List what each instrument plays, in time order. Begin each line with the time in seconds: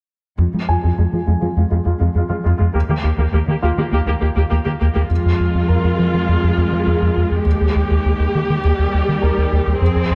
0.38 analog synth bass F2, cello section F2, viola section G#3 F4
0.53 cello section F2, analog synth bass F3, viola section G#3 F4
0.68 cello section F2, analog synth bass F2, viola section G#3 F4, grand piano G#5
0.83 cello section F2, analog synth bass F2, viola section G#3 F4
0.97 cello section F2, analog synth bass F2, viola section G#3 F4
1.12 cello section F2, analog synth bass F3, viola section G#3 F4
1.26 cello section F2, analog synth bass F2, viola section G#3 F4
1.41 cello section F2, analog synth bass F3, viola section G#3 F4
1.56 cello section F2, analog synth bass F2, viola section G#3 F4
1.70 cello section F2, analog synth bass F2, viola section G#3 F4
1.85 cello section F2, analog synth bass F2, viola section G#3 F4
2.00 cello section F2, analog synth bass F2, viola section G#3 F4
2.15 cello section F2, analog synth bass F2, viola section G#3 F4
2.29 cello section F2, analog synth bass F3, viola section G#3 F4
2.44 cello section F2, analog synth bass F2, viola section G#3 F4
2.58 cello section F2, analog synth bass F2, viola section G#3 F4
2.73 cello section D#2, analog synth bass D#2, viola section A#3 G4
2.88 cello section D#2, analog synth bass D#3, viola section A#3 G4
3.03 cello section D#2, analog synth bass D#2, viola section A#3 G4
3.17 cello section D#2, analog synth bass D#2, viola section A#3 G4
3.32 cello section D#2, analog synth bass D#2, viola section A#3 G4
3.46 cello section D#2, analog synth bass D#3, viola section A#3 G4
3.61 cello section D#2, analog synth bass D#2, viola section A#3 G4, grand piano F4 F5
3.76 cello section D#2, analog synth bass D#3, viola section A#3 G4
3.92 cello section D#2, analog synth bass D#2, viola section A#3 G4
4.06 cello section D#2, analog synth bass D#2, viola section A#3 G4
4.21 cello section D#2, analog synth bass D#2, viola section A#3 G4
4.36 cello section D#2, analog synth bass D#2, viola section A#3 G4
4.50 cello section D#2, analog synth bass D#2, viola section A#3 G4
4.65 cello section D#2, analog synth bass D#3, viola section A#3 G4
4.80 cello section D#2, analog synth bass D#2, viola section A#3 G4
4.95 cello section D#2, analog synth bass D#2, viola section A#3 G4
5.09 cello section F2, analog synth bass F2, viola section G#3 F4
5.26 analog synth bass F2
5.40 analog synth bass F2
5.55 analog synth bass F2
5.68 analog synth bass F2, grand piano A#4
5.85 analog synth bass F2
5.99 analog synth bass F3
6.14 analog synth bass F3
6.29 analog synth bass F2
6.44 analog synth bass F2
6.58 analog synth bass F2
6.73 analog synth bass F3
6.86 analog synth bass F2, grand piano G#4
7.02 analog synth bass F2
7.17 analog synth bass F2
7.32 analog synth bass F2
7.45 cello section D#2, analog synth bass D#2, viola section G4
7.61 analog synth bass D#2
7.76 analog synth bass D#2
7.91 analog synth bass D#2
8.06 analog synth bass D#2
8.20 analog synth bass D#2
8.35 analog synth bass D#3
8.50 analog synth bass D#3
8.63 analog synth bass D#2, viola section G3
8.79 analog synth bass D#2
8.94 analog synth bass D#2
9.09 analog synth bass D#3
9.22 analog synth bass D#2, grand piano A#4
9.38 analog synth bass D#2
9.53 analog synth bass D#2
9.67 analog synth bass D#2
9.81 cello section F2, analog synth bass F2, viola section C4 G#4
9.96 analog synth bass F2
10.11 analog synth bass F2